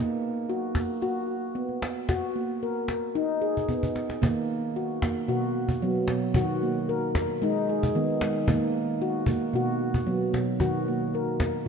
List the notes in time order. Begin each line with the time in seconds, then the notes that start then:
Already playing: A#3
0.49 F#4, cajon slap
0.75 A#3, cajon bass, cajon slap
0.88 cajon slap
1.02 F#4, cajon slap
1.55 B3
1.69 cajon slap
1.82 cajon slap
2.09 F#4, cajon bass, cajon slap
2.23 cajon slap
2.36 A#3
2.62 A#4, cajon slap
2.88 cajon slap
3.15 D#4
3.42 G#4
3.57 cajon bass
3.69 B3, cajon bass
3.83 cajon bass
3.96 cajon slap
4.10 cajon slap
4.22 D#3 A#3, cajon bass
4.76 F#4, cajon slap
5.02 A#3, cajon bass, cajon slap
5.16 cajon slap
5.28 B2 F#4, cajon slap
5.69 cajon bass
5.82 F#3 B3
5.95 cajon slap
6.08 B2, cajon slap
6.34 D#3 F#4, cajon bass
6.63 A#3
6.89 A#4, cajon slap
7.15 cajon bass, cajon slap
7.29 cajon slap
7.42 G#3 D#4, cajon slap
7.69 G#4
7.83 cajon bass
7.95 D#3 B3
8.10 cajon slap
8.21 G#3, cajon slap
8.47 D#3 A#3, cajon bass
9.00 F#4, cajon slap
9.26 A#3, cajon bass
9.41 cajon slap
9.53 B2 F#4, cajon slap
9.94 cajon bass
10.07 F#3 B3
10.21 cajon slap
10.33 B2, cajon slap
10.60 D#3 F#4, cajon bass, cajon slap
10.74 cajon slap
10.87 A#3, cajon slap
11.01 cajon slap
11.14 A#4, cajon slap
11.27 cajon slap
11.40 cajon bass, cajon slap